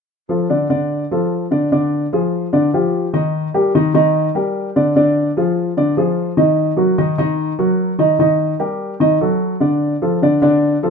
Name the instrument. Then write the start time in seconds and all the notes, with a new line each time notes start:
grand piano
0.29 F3 F4 A4
0.50 D3 D4 D5
0.70 D3 D4 D5
1.11 F3 F4 A4
1.51 D3 D4 D5
1.72 D3 D4 D5
2.13 F3 F4 G#4
2.53 D3 D4 D5
2.74 F3 F4 G4
3.13 D#3 D#4 D#5
3.54 G3 G4 A#4
3.75 D#3 D#4 D#5
3.94 D#3 D#4 D#5
4.35 G3 G4 A#4
4.76 D3 D4 D5
4.96 D3 D4 D5
5.37 F3 F4 G#4
5.77 D3 D4 D5
5.97 F3 F4 G#4
6.37 D#3 D#4 D#5
6.77 F#3 F#4 A#4
6.98 D#3 D#4 D#5
7.18 D#3 D#4 D#5
7.59 F#3 F#4 A#4
7.99 D#3 D#4 D#5
8.19 D#3 D#4 D#5
8.59 G3 G4 A#4
9.00 D#3 D#4 D#5
9.21 F#3 F#4 A4
9.60 D3 D4 D5
10.02 F3 F4 A4
10.22 D3 D4 D5
10.42 D3 D4 D5
10.83 F3 F4 A4